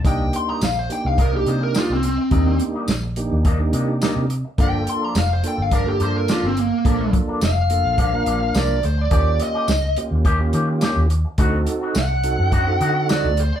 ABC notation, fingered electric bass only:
X:1
M:4/4
L:1/16
Q:1/4=106
K:Gm
V:1 name="Fingered electric bass" clef=bass
C,,2 z2 B,,,2 z C,,3 C,2 z C,,2 z | E,,2 z2 B,,,3 E,,3 C,2 z C,2 z | G,,,2 z2 F,,,2 z G,,,3 G,,2 z G,,,2 z | B,,,2 z2 F,,,3 B,,,3 B,,,2 C,,2 D,,2 |
E,,2 z2 _D,,2 z E,,3 E,2 z E,,2 z | D,,2 z2 C,,3 ^F,,3 D,3 D,,2 z |]